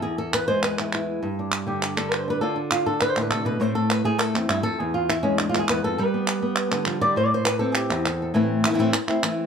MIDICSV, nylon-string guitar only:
0, 0, Header, 1, 3, 480
1, 0, Start_track
1, 0, Key_signature, 0, "minor"
1, 0, Tempo, 296589
1, 65, Time_signature, 4, 2, 24, 8
1, 15313, End_track
2, 0, Start_track
2, 0, Title_t, "Nylon-string guitar"
2, 0, Program_c, 0, 24
2, 38, Note_on_c, 0, 68, 82
2, 50, Note_on_c, 0, 40, 67
2, 289, Note_off_c, 0, 68, 0
2, 296, Note_on_c, 0, 69, 83
2, 541, Note_off_c, 0, 69, 0
2, 547, Note_on_c, 0, 71, 82
2, 766, Note_off_c, 0, 71, 0
2, 772, Note_on_c, 0, 72, 100
2, 789, Note_on_c, 0, 56, 58
2, 1017, Note_off_c, 0, 72, 0
2, 1023, Note_on_c, 0, 71, 84
2, 1261, Note_off_c, 0, 40, 0
2, 1278, Note_on_c, 0, 40, 55
2, 1289, Note_on_c, 0, 64, 42
2, 1510, Note_off_c, 0, 64, 0
2, 1530, Note_on_c, 0, 64, 45
2, 1963, Note_off_c, 0, 56, 0
2, 1972, Note_off_c, 0, 64, 0
2, 1977, Note_off_c, 0, 40, 0
2, 1984, Note_on_c, 0, 43, 75
2, 1989, Note_off_c, 0, 71, 0
2, 2251, Note_on_c, 0, 62, 41
2, 2695, Note_on_c, 0, 50, 60
2, 2710, Note_on_c, 0, 67, 43
2, 3162, Note_off_c, 0, 50, 0
2, 3181, Note_on_c, 0, 50, 53
2, 3182, Note_off_c, 0, 67, 0
2, 3189, Note_on_c, 0, 69, 80
2, 3419, Note_off_c, 0, 69, 0
2, 3419, Note_on_c, 0, 71, 80
2, 3566, Note_off_c, 0, 71, 0
2, 3566, Note_on_c, 0, 72, 93
2, 3668, Note_off_c, 0, 62, 0
2, 3687, Note_on_c, 0, 62, 43
2, 3718, Note_off_c, 0, 72, 0
2, 3725, Note_on_c, 0, 71, 87
2, 3881, Note_off_c, 0, 50, 0
2, 3884, Note_off_c, 0, 43, 0
2, 3893, Note_off_c, 0, 62, 0
2, 3897, Note_off_c, 0, 71, 0
2, 3904, Note_on_c, 0, 69, 83
2, 3912, Note_on_c, 0, 50, 68
2, 3927, Note_on_c, 0, 62, 49
2, 3935, Note_on_c, 0, 65, 54
2, 4119, Note_off_c, 0, 62, 0
2, 4138, Note_on_c, 0, 62, 48
2, 4150, Note_off_c, 0, 69, 0
2, 4374, Note_off_c, 0, 65, 0
2, 4388, Note_off_c, 0, 62, 0
2, 4393, Note_on_c, 0, 65, 78
2, 4635, Note_on_c, 0, 69, 86
2, 4636, Note_off_c, 0, 65, 0
2, 4637, Note_on_c, 0, 62, 60
2, 4875, Note_off_c, 0, 69, 0
2, 4882, Note_on_c, 0, 71, 90
2, 5020, Note_off_c, 0, 71, 0
2, 5020, Note_on_c, 0, 72, 89
2, 5108, Note_on_c, 0, 45, 50
2, 5190, Note_off_c, 0, 72, 0
2, 5196, Note_on_c, 0, 71, 77
2, 5343, Note_off_c, 0, 71, 0
2, 5349, Note_on_c, 0, 69, 77
2, 5357, Note_on_c, 0, 48, 59
2, 5577, Note_off_c, 0, 48, 0
2, 5584, Note_on_c, 0, 47, 61
2, 5593, Note_off_c, 0, 69, 0
2, 5599, Note_on_c, 0, 71, 89
2, 5806, Note_off_c, 0, 45, 0
2, 5810, Note_off_c, 0, 62, 0
2, 5816, Note_off_c, 0, 47, 0
2, 5823, Note_on_c, 0, 45, 71
2, 5824, Note_off_c, 0, 50, 0
2, 5830, Note_on_c, 0, 57, 47
2, 5839, Note_off_c, 0, 71, 0
2, 5839, Note_on_c, 0, 72, 94
2, 5847, Note_on_c, 0, 60, 46
2, 5858, Note_on_c, 0, 64, 53
2, 6065, Note_off_c, 0, 72, 0
2, 6071, Note_on_c, 0, 69, 89
2, 6317, Note_off_c, 0, 69, 0
2, 6317, Note_on_c, 0, 71, 85
2, 6526, Note_off_c, 0, 57, 0
2, 6545, Note_on_c, 0, 57, 60
2, 6551, Note_off_c, 0, 71, 0
2, 6558, Note_on_c, 0, 68, 99
2, 6773, Note_off_c, 0, 68, 0
2, 6773, Note_on_c, 0, 69, 86
2, 7013, Note_off_c, 0, 60, 0
2, 7027, Note_off_c, 0, 69, 0
2, 7028, Note_on_c, 0, 40, 54
2, 7032, Note_off_c, 0, 45, 0
2, 7035, Note_on_c, 0, 60, 44
2, 7253, Note_off_c, 0, 64, 0
2, 7272, Note_on_c, 0, 64, 83
2, 7274, Note_off_c, 0, 40, 0
2, 7276, Note_off_c, 0, 60, 0
2, 7285, Note_on_c, 0, 43, 64
2, 7491, Note_off_c, 0, 64, 0
2, 7498, Note_on_c, 0, 69, 112
2, 7523, Note_off_c, 0, 43, 0
2, 7532, Note_on_c, 0, 41, 60
2, 7724, Note_off_c, 0, 57, 0
2, 7763, Note_off_c, 0, 41, 0
2, 7765, Note_off_c, 0, 69, 0
2, 7765, Note_on_c, 0, 68, 85
2, 7769, Note_on_c, 0, 40, 75
2, 7996, Note_on_c, 0, 65, 80
2, 8002, Note_off_c, 0, 68, 0
2, 8238, Note_off_c, 0, 65, 0
2, 8241, Note_on_c, 0, 64, 82
2, 8461, Note_on_c, 0, 61, 90
2, 8480, Note_off_c, 0, 64, 0
2, 8480, Note_on_c, 0, 56, 62
2, 8705, Note_off_c, 0, 61, 0
2, 8711, Note_on_c, 0, 62, 79
2, 8875, Note_off_c, 0, 62, 0
2, 8892, Note_on_c, 0, 65, 76
2, 8950, Note_off_c, 0, 40, 0
2, 8970, Note_on_c, 0, 40, 54
2, 8982, Note_on_c, 0, 59, 46
2, 9045, Note_off_c, 0, 65, 0
2, 9050, Note_on_c, 0, 68, 82
2, 9192, Note_off_c, 0, 40, 0
2, 9204, Note_off_c, 0, 68, 0
2, 9211, Note_on_c, 0, 40, 65
2, 9218, Note_on_c, 0, 71, 96
2, 9445, Note_off_c, 0, 40, 0
2, 9448, Note_off_c, 0, 71, 0
2, 9456, Note_on_c, 0, 69, 95
2, 9463, Note_on_c, 0, 41, 66
2, 9650, Note_off_c, 0, 56, 0
2, 9660, Note_off_c, 0, 59, 0
2, 9683, Note_on_c, 0, 71, 82
2, 9687, Note_off_c, 0, 69, 0
2, 9690, Note_off_c, 0, 41, 0
2, 9698, Note_on_c, 0, 55, 84
2, 9937, Note_on_c, 0, 59, 49
2, 10377, Note_off_c, 0, 59, 0
2, 10397, Note_on_c, 0, 59, 61
2, 10863, Note_off_c, 0, 59, 0
2, 10873, Note_on_c, 0, 50, 57
2, 10882, Note_on_c, 0, 59, 44
2, 11101, Note_off_c, 0, 59, 0
2, 11108, Note_on_c, 0, 53, 69
2, 11117, Note_off_c, 0, 71, 0
2, 11334, Note_off_c, 0, 55, 0
2, 11347, Note_off_c, 0, 53, 0
2, 11352, Note_on_c, 0, 74, 103
2, 11353, Note_on_c, 0, 55, 68
2, 11563, Note_off_c, 0, 50, 0
2, 11591, Note_off_c, 0, 74, 0
2, 11592, Note_on_c, 0, 45, 70
2, 11593, Note_off_c, 0, 55, 0
2, 11607, Note_on_c, 0, 72, 84
2, 11746, Note_off_c, 0, 72, 0
2, 11746, Note_on_c, 0, 74, 101
2, 11876, Note_off_c, 0, 74, 0
2, 11883, Note_on_c, 0, 72, 94
2, 12057, Note_off_c, 0, 72, 0
2, 12062, Note_on_c, 0, 71, 89
2, 12280, Note_off_c, 0, 71, 0
2, 12287, Note_on_c, 0, 69, 94
2, 12313, Note_on_c, 0, 60, 64
2, 12531, Note_off_c, 0, 69, 0
2, 12531, Note_on_c, 0, 67, 89
2, 12782, Note_on_c, 0, 40, 62
2, 12789, Note_off_c, 0, 45, 0
2, 12789, Note_on_c, 0, 64, 46
2, 13019, Note_off_c, 0, 67, 0
2, 13039, Note_on_c, 0, 69, 53
2, 13273, Note_off_c, 0, 69, 0
2, 13305, Note_on_c, 0, 69, 47
2, 13478, Note_off_c, 0, 64, 0
2, 13480, Note_off_c, 0, 60, 0
2, 13497, Note_off_c, 0, 69, 0
2, 13497, Note_on_c, 0, 45, 83
2, 13503, Note_on_c, 0, 52, 81
2, 13504, Note_off_c, 0, 40, 0
2, 13512, Note_on_c, 0, 57, 80
2, 13522, Note_on_c, 0, 60, 93
2, 13525, Note_on_c, 0, 64, 81
2, 13967, Note_off_c, 0, 64, 0
2, 13971, Note_off_c, 0, 45, 0
2, 13974, Note_off_c, 0, 52, 0
2, 13979, Note_off_c, 0, 57, 0
2, 13984, Note_off_c, 0, 60, 0
2, 13987, Note_on_c, 0, 64, 52
2, 14007, Note_on_c, 0, 60, 40
2, 14023, Note_on_c, 0, 57, 41
2, 14066, Note_off_c, 0, 57, 0
2, 14069, Note_off_c, 0, 60, 0
2, 14072, Note_off_c, 0, 64, 0
2, 14075, Note_on_c, 0, 52, 51
2, 14085, Note_on_c, 0, 57, 54
2, 14088, Note_on_c, 0, 60, 61
2, 14091, Note_on_c, 0, 64, 54
2, 14125, Note_off_c, 0, 52, 0
2, 14141, Note_off_c, 0, 57, 0
2, 14144, Note_off_c, 0, 60, 0
2, 14144, Note_on_c, 0, 52, 75
2, 14146, Note_off_c, 0, 64, 0
2, 14161, Note_on_c, 0, 57, 72
2, 14163, Note_on_c, 0, 60, 67
2, 14165, Note_on_c, 0, 64, 74
2, 14206, Note_off_c, 0, 52, 0
2, 14218, Note_off_c, 0, 57, 0
2, 14218, Note_off_c, 0, 60, 0
2, 14222, Note_off_c, 0, 64, 0
2, 14222, Note_on_c, 0, 45, 77
2, 14226, Note_on_c, 0, 52, 73
2, 14237, Note_on_c, 0, 57, 88
2, 14238, Note_on_c, 0, 60, 81
2, 14242, Note_on_c, 0, 64, 101
2, 14445, Note_off_c, 0, 45, 0
2, 14447, Note_off_c, 0, 57, 0
2, 14450, Note_off_c, 0, 52, 0
2, 14458, Note_off_c, 0, 60, 0
2, 14460, Note_off_c, 0, 64, 0
2, 14690, Note_on_c, 0, 64, 56
2, 14710, Note_on_c, 0, 60, 54
2, 14730, Note_on_c, 0, 57, 42
2, 14927, Note_off_c, 0, 64, 0
2, 14931, Note_off_c, 0, 57, 0
2, 14937, Note_off_c, 0, 60, 0
2, 14939, Note_on_c, 0, 52, 56
2, 14951, Note_on_c, 0, 57, 48
2, 14960, Note_on_c, 0, 60, 53
2, 14970, Note_on_c, 0, 64, 57
2, 15313, Note_off_c, 0, 52, 0
2, 15313, Note_off_c, 0, 57, 0
2, 15313, Note_off_c, 0, 60, 0
2, 15313, Note_off_c, 0, 64, 0
2, 15313, End_track
3, 0, Start_track
3, 0, Title_t, "Muted nylon-string guitar strokes"
3, 14464, Note_on_c, 9, 29, 67
3, 14626, Note_off_c, 9, 29, 0
3, 15313, End_track
0, 0, End_of_file